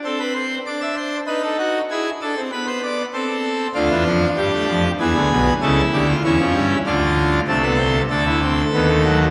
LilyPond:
<<
  \new Staff \with { instrumentName = "Pipe organ" } { \time 3/4 \key a \phrygian \tempo 4 = 97 << { a'16 b'16 c''8 d''16 e''16 c''8 b'16 a'16 fis'8 | gis'8 a'8 b'16 c''16 d''8 a'4 | f'4 g'4 gis'4 | a'8 g'16 f'16 e'4 f'4 |
a'4 a'2 | } \\ { c'4 d'4 dis'4 | e'8 d'16 c'16 b4 c'4 | d'2 b4 | e'4 cis'4 d'4 |
a16 b16 c'8 d'16 e'16 c'8 b16 a16 fis8 | } >> }
  \new Staff \with { instrumentName = "Pipe organ" } { \clef bass \time 3/4 \key a \phrygian r2. | r2. | <d, d>16 <e, e>16 <f, f>8 <g, g>16 a16 <f, f>8 <e, e>16 <d, d>16 <b,, b,>8 | <cis, cis>8 <d, d>8 <e, e>16 <f, f>16 <g, g>8 <d, d>4 |
<c, c>4 <d, d>4 <dis, dis>4 | }
>>